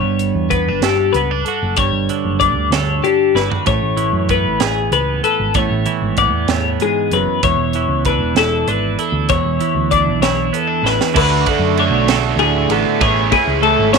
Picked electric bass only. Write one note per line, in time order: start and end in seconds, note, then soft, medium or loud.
0.03 0.32 G1 medium
0.35 0.69 E2 medium
0.68 0.81 G1 medium
0.81 1.10 G1 medium
1.14 1.42 C#2 medium
1.63 1.76 F#1 medium
1.77 1.92 G1 medium
1.93 2.07 G1 medium
2.25 2.56 F#1 medium
2.56 2.70 D2 medium
2.71 2.99 D2 medium
3.35 3.49 G1 medium
3.66 3.81 A1 medium
3.82 4.10 A1 medium
4.13 4.46 F#2 medium
4.44 4.59 A1 medium
4.60 4.89 A1 medium
4.91 5.20 C#2 medium
5.40 5.54 G#1 medium
5.54 5.69 A1 medium
5.71 5.85 A1 medium
6.01 6.32 G#1 medium
6.32 6.47 E2 medium
6.48 6.76 E2 medium
7.11 7.26 F#1 medium
7.43 7.56 E1 medium
7.57 7.85 E1 medium
7.88 8.20 C#2 medium
8.19 8.34 E1 medium
8.35 8.63 E1 medium
8.67 8.95 G#1 medium
9.12 9.27 D2 loud
9.29 9.44 E1 medium
9.44 9.59 E1 medium
9.75 10.09 D2 medium
10.07 10.20 B1 medium
10.21 10.49 B1 medium
10.83 10.98 A1 medium
11.15 11.43 D2 medium
11.59 11.88 F#2 medium
11.90 12.33 B1 medium
12.36 12.65 D2 loud
12.68 12.83 A1 medium
13.01 13.29 A1 loud
13.47 13.75 C#2 medium
13.79 13.98 G#1 loud